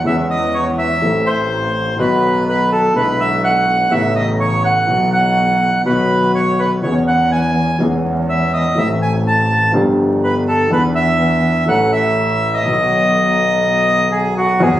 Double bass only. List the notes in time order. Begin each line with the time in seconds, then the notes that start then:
0.05 E2
1.02 A1
1.99 B1
2.95 B1
3.92 A1
4.88 B1
5.86 B1
6.83 E2
7.81 E2
8.78 A1
9.74 G1
10.71 E2
11.68 A1
12.65 B1
14.61 E2